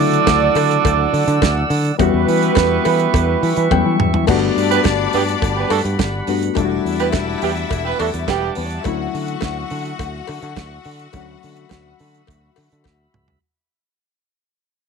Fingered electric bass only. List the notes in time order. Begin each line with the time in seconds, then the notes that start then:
0.00 D3
0.28 D2
0.55 D3
0.85 D2
1.13 D3
1.27 D3
1.42 D2
1.70 D3
2.00 E2
2.14 E2
2.28 E3
2.56 E2
2.86 E3
3.14 E2
3.43 E3
3.57 E3
3.71 E2
3.86 E3
4.00 E2
4.14 E3
4.28 G1
4.57 G2
4.85 G1
5.14 G2
5.42 G1
5.71 G2
5.85 G2
6.00 G1
6.28 G2
6.57 E1
6.85 E2
7.13 E1
7.42 E2
7.71 E1
8.00 E2
8.14 E2
8.28 E1
8.57 E2
8.85 D2
9.14 D3
9.42 D2
9.71 D3
10.00 D2
10.29 D3
10.43 D3
10.57 D2
10.86 D3
11.14 D2
11.44 D3
11.71 D2
12.00 D3
12.28 D2
12.58 D3
12.72 D3
12.85 D2
13.15 C#2